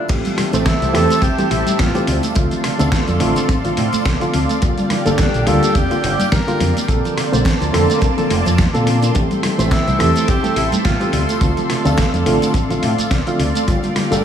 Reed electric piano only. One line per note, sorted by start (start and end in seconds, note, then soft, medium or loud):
0.09 0.49 E3 medium
0.09 0.50 A3 medium
0.09 0.50 C4 medium
0.09 0.50 G4 medium
0.53 0.91 E3 medium
0.53 0.91 A3 medium
0.53 0.91 C4 medium
0.53 0.91 C5 loud
0.93 1.19 E3 medium
0.93 1.19 A3 medium
0.93 1.19 C4 medium
0.93 1.19 G4 loud
1.38 1.52 E3 medium
1.38 1.52 A3 medium
1.38 1.52 C4 medium
1.38 1.53 G4 medium
1.94 2.06 E3 medium
1.94 2.06 A3 medium
1.94 2.06 C4 medium
1.94 2.06 G4 loud
2.35 2.76 D3 medium
2.35 2.76 A3 medium
2.35 2.76 C4 medium
2.35 2.76 F4 medium
2.79 3.17 D3 medium
2.79 3.17 A3 medium
2.79 3.17 C4 medium
2.79 3.18 A4 loud
3.20 3.45 D3 loud
3.20 3.45 A3 medium
3.20 3.46 C4 medium
3.20 3.46 F4 loud
3.64 3.78 D3 medium
3.64 3.78 A3 medium
3.64 3.78 C4 medium
3.64 3.79 F4 loud
4.21 4.35 D3 loud
4.21 4.35 A3 medium
4.21 4.35 C4 medium
4.21 4.35 F4 loud
4.62 5.02 D3 medium
4.62 5.02 G3 medium
4.62 5.02 A#3 medium
4.62 5.03 F4 medium
5.05 5.44 D3 medium
5.05 5.44 G3 medium
5.05 5.44 A#3 medium
5.05 5.44 A4 loud
5.47 5.72 D3 loud
5.47 5.72 G3 medium
5.47 5.72 A#3 medium
5.47 5.72 F4 loud
5.90 6.05 D3 medium
5.90 6.05 G3 medium
5.90 6.05 A#3 medium
5.90 6.05 F4 loud
6.47 6.61 D3 loud
6.47 6.61 G3 medium
6.47 6.62 A#3 medium
6.47 6.62 F4 loud
6.88 7.29 D3 medium
6.88 7.29 A#3 medium
6.88 7.29 C4 medium
6.88 7.29 A4 medium
7.32 7.70 D3 medium
7.32 7.70 A#3 medium
7.32 7.71 C4 medium
7.32 7.71 C5 loud
7.73 7.98 D3 loud
7.73 7.98 A#3 medium
7.73 7.99 C4 medium
7.73 7.99 A4 loud
8.17 8.31 D3 medium
8.17 8.31 A#3 medium
8.17 8.31 C4 medium
8.17 8.32 A4 loud
8.73 8.88 D3 medium
8.73 8.88 A#3 medium
8.73 8.88 C4 medium
8.73 8.88 A4 loud
9.14 9.55 E3 medium
9.14 9.55 A3 medium
9.14 9.55 C4 medium
9.14 9.55 G4 medium
9.58 9.96 E3 medium
9.58 9.96 A3 medium
9.58 9.97 C4 medium
9.58 9.97 C5 loud
9.99 10.24 E3 loud
9.99 10.25 A3 medium
9.99 10.25 C4 medium
9.99 10.25 G4 loud
10.43 10.57 E3 medium
10.43 10.57 A3 medium
10.43 10.58 C4 medium
10.43 10.58 G4 loud
11.00 11.11 E3 loud
11.00 11.11 A3 medium
11.00 11.11 C4 medium
11.00 11.12 G4 loud
11.41 11.81 D3 medium
11.41 11.82 A3 medium
11.41 11.82 C4 medium
11.41 11.82 F4 medium
11.85 12.23 D3 medium
11.85 12.23 A3 medium
11.85 12.23 C4 medium
11.85 12.23 A4 loud
12.26 12.51 D3 loud
12.26 12.51 A3 medium
12.26 12.51 C4 medium
12.26 12.52 F4 loud
12.70 12.84 D3 medium
12.70 12.84 A3 medium
12.70 12.84 C4 medium
12.70 12.84 F4 medium
13.27 13.41 D3 loud
13.27 13.41 A3 medium
13.27 13.41 C4 medium
13.27 13.41 F4 loud
13.67 14.08 D3 medium
13.67 14.08 G3 medium
13.67 14.08 A#3 medium
13.67 14.08 F4 loud
14.11 14.24 D3 medium
14.11 14.24 G3 medium
14.11 14.24 A#3 medium
14.11 14.24 A4 loud